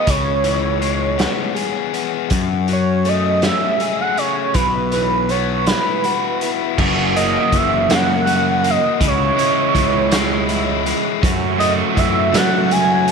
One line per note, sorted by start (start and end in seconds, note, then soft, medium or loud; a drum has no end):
0.00 0.81 G#3 soft
0.00 1.55 G#4 medium
0.00 0.11 D#5 medium
0.07 1.25 C#2 medium
0.07 1.94 C#3 medium
0.07 1.58 C#5 medium
0.07 kick medium
0.07 closed hi-hat medium
0.44 2.31 E3 medium
0.44 closed hi-hat medium
0.82 2.31 G#3 medium
0.82 closed hi-hat medium
1.18 1.92 B3 medium
1.18 snare loud
1.18 closed hi-hat medium
1.55 2.31 G#4 medium
1.55 closed hi-hat medium
1.93 2.31 B3 medium
1.93 closed hi-hat medium
2.30 3.49 F#2 medium
2.30 4.17 F#2 medium
2.30 kick medium
2.30 closed hi-hat medium
2.68 4.93 F#3 medium
2.68 closed hi-hat medium
2.73 3.10 C#5 medium
3.05 4.55 A3 medium
3.05 3.45 D#5 medium
3.05 closed hi-hat soft
3.42 4.16 C#4 medium
3.42 3.99 E5 loud
3.42 snare medium
3.42 closed hi-hat medium
3.80 4.55 G#4 medium
3.80 closed hi-hat soft
4.01 4.19 F#5 medium
4.17 4.55 C#4 medium
4.17 4.55 C#5 medium
4.17 closed hi-hat medium
4.54 5.72 B1 medium
4.54 6.41 B2 medium
4.54 4.92 B4 loud
4.54 kick medium
4.54 closed hi-hat medium
4.92 6.79 E3 medium
4.92 5.31 B4 medium
4.92 closed hi-hat medium
5.29 6.79 B3 medium
5.29 5.68 C#5 medium
5.29 closed hi-hat soft
5.66 6.41 E4 medium
5.66 6.50 B4 medium
5.66 snare loud
5.66 closed hi-hat medium
6.04 6.79 F#4 medium
6.04 closed hi-hat soft
6.41 6.79 E4 medium
6.41 closed hi-hat medium
6.77 7.36 F#1 medium
6.77 9.00 F#2 medium
6.77 8.64 F#2 medium
6.77 8.97 C#3 medium
6.77 8.99 E3 medium
6.77 9.00 A#3 medium
6.77 9.01 C#4 medium
6.77 9.01 F#4 medium
6.77 kick loud
6.77 crash loud
7.16 7.89 A#3 medium
7.16 7.58 D#5 medium
7.16 closed hi-hat medium
7.52 7.90 F#1 medium
7.52 9.74 E3 medium
7.52 kick medium
7.52 closed hi-hat medium
7.57 7.96 E5 loud
7.88 8.77 F#2 medium
7.88 8.63 A#3 medium
7.88 snare loud
7.88 closed hi-hat medium
7.94 8.72 F#5 loud
8.26 9.01 F#4 medium
8.26 closed hi-hat medium
8.64 9.01 A#3 medium
8.64 closed hi-hat medium
8.70 9.04 D#5 medium
8.98 9.30 C#2 medium
8.98 11.20 C#3 medium
8.98 10.86 C#3 medium
8.98 11.22 E3 medium
8.98 11.22 G#3 medium
8.98 11.21 C#4 medium
8.98 11.23 E4 medium
8.98 kick loud
8.98 closed hi-hat medium
9.07 10.85 C#5 medium
9.37 10.10 G#3 medium
9.37 closed hi-hat medium
9.75 10.92 C#2 medium
9.75 11.23 E3 medium
9.75 kick medium
9.75 closed hi-hat medium
10.11 10.85 G#3 medium
10.11 snare loud
10.11 closed hi-hat medium
10.49 11.23 E4 medium
10.49 closed hi-hat medium
10.86 11.23 G#3 medium
10.86 closed hi-hat medium
11.20 13.12 F#2 medium
11.20 13.07 F#2 medium
11.20 11.81 F#2 loud
11.20 13.12 C#3 medium
11.20 13.12 F#3 medium
11.20 13.12 A3 medium
11.20 13.12 C#4 medium
11.20 13.12 F#4 medium
11.20 kick loud
11.20 closed hi-hat medium
11.58 12.31 A3 medium
11.58 11.73 D#5 medium
11.58 closed hi-hat medium
11.95 12.35 F#2 medium
11.95 13.12 E3 medium
11.95 12.38 E5 medium
11.95 kick medium
11.95 closed hi-hat medium
12.32 13.12 F#3 loud
12.32 13.06 A3 medium
12.32 snare loud
12.32 closed hi-hat medium
12.37 12.73 F#5 loud
12.69 13.12 F#4 medium
12.69 13.11 G#5 loud
12.69 closed hi-hat medium
13.07 13.12 A3 medium
13.07 closed hi-hat medium